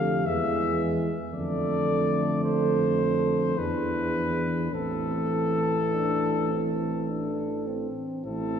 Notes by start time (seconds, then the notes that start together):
Already playing: F2 D3 A3 G4 F5
0.25 E2 E3 G#3 G#4 E5
1.32 F2 D3 A3 A4 D5
2.43 C5
3.56 E2 E3 D4 G#4 B4
4.72 A1 E3 C4 A4
5.92 D4
6.51 C4
7.09 D4
7.67 C4
8.24 A1 C4 E4 A4